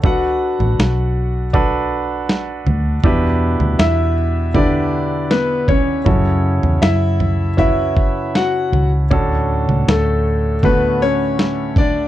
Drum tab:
SD |----o-------o---|----o-------o---|----o-------o---|----o-------o---|
FT |o--o----o-----o-|o--o----o-----o-|o--o--o-o-----o-|o--o----o-----o-|
BD |o-------o-------|o-------o-----o-|o-------o-o-----|o-------o-----o-|